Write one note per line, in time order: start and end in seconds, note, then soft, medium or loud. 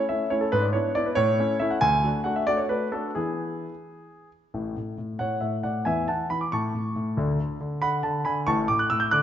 0.09 0.26 A3 medium
0.09 0.26 C#4 soft
0.09 0.26 E4 soft
0.09 0.31 E5 medium
0.30 0.47 A3 medium
0.30 0.47 C#4 medium
0.30 0.47 E4 medium
0.30 0.42 C#5 medium
0.41 0.52 A4 medium
0.52 0.74 G#2 medium
0.52 0.63 B4 loud
0.62 0.74 D5 medium
0.73 0.89 B3 medium
0.73 0.90 D4 medium
0.73 0.90 E4 medium
0.73 0.95 C#5 medium
0.95 1.11 B3 medium
0.95 1.11 D4 medium
0.95 1.12 E4 medium
0.95 1.06 D5 loud
1.06 1.17 B4 medium
1.15 1.38 A2 medium
1.15 1.60 C#5 loud
1.39 1.54 A3 medium
1.39 1.55 C#4 medium
1.39 1.55 E4 medium
1.60 1.76 A3 medium
1.60 1.76 C#4 medium
1.60 1.77 E4 medium
1.60 1.71 E5 medium
1.70 1.82 F#5 medium
1.81 2.03 D2 medium
1.81 2.07 G#5 loud
2.04 2.19 A3 medium
2.04 2.19 D4 medium
2.04 2.20 F#4 medium
2.24 2.41 A3 medium
2.24 2.41 D4 medium
2.24 2.42 F#4 medium
2.24 2.35 F#5 medium
2.36 2.47 E5 medium
2.47 2.64 A3 medium
2.47 2.64 D4 medium
2.47 2.64 F#4 medium
2.47 2.58 D5 loud
2.57 2.69 C#5 medium
2.69 2.86 A3 medium
2.69 2.86 D4 soft
2.69 2.87 F#4 medium
2.69 2.92 B4 medium
2.92 3.09 A3 medium
2.92 3.10 D4 medium
2.92 3.10 F#4 medium
2.92 3.15 A4 medium
3.15 3.64 E3 medium
3.15 3.71 B3 medium
3.15 3.71 E4 soft
3.15 4.27 G#4 medium
4.54 4.76 A1 medium
4.54 4.75 A2 medium
4.77 4.97 A2 soft
4.98 5.18 A2 soft
5.19 5.40 A2 soft
5.19 5.40 C#5 medium
5.19 5.42 F#5 medium
5.41 5.62 A2 soft
5.41 5.63 C#5 soft
5.41 5.54 E5 medium
5.63 5.86 A2 medium
5.63 5.85 D5 medium
5.63 5.84 F#5 medium
5.85 6.08 E2 medium
5.85 6.07 E3 medium
5.85 6.07 E5 medium
5.85 6.08 G#5 medium
6.08 6.29 E3 medium
6.08 6.29 F#5 medium
6.08 6.28 A5 medium
6.30 6.52 E3 medium
6.30 6.41 B5 medium
6.41 6.52 D6 medium
6.52 6.73 A2 medium
6.52 7.14 A5 medium
6.52 7.18 C#6 medium
6.74 6.94 A2 soft
6.96 7.17 A2 medium
7.17 7.39 D2 medium
7.17 7.38 D3 medium
7.40 7.59 D3 medium
7.61 7.81 D3 medium
7.82 8.02 D3 medium
7.82 8.03 F#5 medium
7.82 7.95 B5 loud
8.03 8.24 D3 medium
8.03 8.24 F#5 medium
8.03 8.23 A5 medium
8.25 8.46 D3 medium
8.25 8.46 G#5 medium
8.25 8.38 B5 medium
8.47 8.68 A1 medium
8.47 8.67 A2 medium
8.47 8.67 A5 medium
8.47 8.60 C#6 loud
8.68 8.89 A2 medium
8.68 8.79 D6 medium
8.79 8.90 F#6 medium
8.90 9.11 A2 medium
8.90 9.01 E6 medium
9.00 9.11 G6 medium
9.11 9.22 D3 medium
9.11 9.22 D6 medium
9.11 9.22 F#6 loud